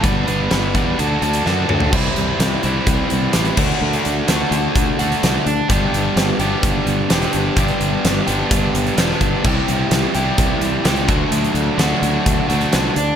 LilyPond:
<<
  \new Staff \with { instrumentName = "Overdriven electric guitar" } { \time 4/4 \key d \mixolydian \tempo 4 = 128 <g b d' b'>8 <g b d' b'>8 <g b d' b'>8 <g b d' b'>8 <d d' fis' a'>8 <d d' fis' a'>8 <d d' fis' a'>8 <d d' fis' a'>8 | \key g \major <c e g c' e'>4. <c e g c' e'>4. <c e g c' e'>8 <d a d' fis'>8~ | <d a d' fis'>4 <d a d' fis'>4. <d a d' fis'>4 r8 | <g, d g b d' g'>4. <g, d g b d' g'>4. <g, d g b d' g'>4 |
<g, d g b d' g'>4. <g, d g b d' g'>4. <g, d g b d' g'>4 | <c e g e' g'>4. <c e g e' g'>4. <c e g e' g'>8 <d fis a d' fis'>8~ | <d fis a d' fis'>4 <d fis a d' fis'>4. <d fis a d' fis'>4 r8 | }
  \new Staff \with { instrumentName = "Fingered electric bass" } { \clef bass \time 4/4 \key d \mixolydian g,,8 g,,8 g,,8 e,8 d,8 d,8 fis,8 d,8 | \key g \major c,8 c,8 c,8 c,8 c,8 c,8 a,,8 d,8 | d,8 d,8 d,8 d,8 d,8 d,8 c,8 d,8 | g,,8 g,,8 g,,8 g,,8 g,,8 g,,8 e,,8 g,,8 |
g,,8 g,,8 g,,8 g,,8 g,,8 g,,8 e,,8 g,,8 | c,8 c,8 c,8 c,8 c,8 c,8 cis,8 d,8 | d,8 d,8 d,8 d,8 d,8 d,8 c,8 d,8 | }
  \new DrumStaff \with { instrumentName = "Drums" } \drummode { \time 4/4 <hh bd>8 hh8 <hh sn>8 <hh bd>8 hh8 hh16 hh16 sn8 toml16 tomfh16 | <cymc bd>8 hh8 <hh sn>8 hh8 <hh bd>8 hh8 <hh sn>16 hh16 <cymc bd>8 | r16 hh16 hh8 <hh sn>8 hh8 <hh bd>8 hh16 hh16 <hh sn>8 hh8 | <hh bd>8 hh8 <hh sn>8 hh8 <hh bd>8 hh8 <hh sn>16 <hh sn>16 hh8 |
<hh bd>16 hh16 hh8 <hh sn>8 hh8 <hh bd>8 hh16 hh16 <hh sn>16 sn16 <hh bd>8 | <cymc bd>8 hh8 <hh sn>8 hh8 <hh bd>8 hh8 <hh sn>16 hh16 <hh bd>8 | hh16 hh16 hh8 <hh sn>8 hh8 <hh bd>8 hh16 hh16 <hh sn>8 hh8 | }
>>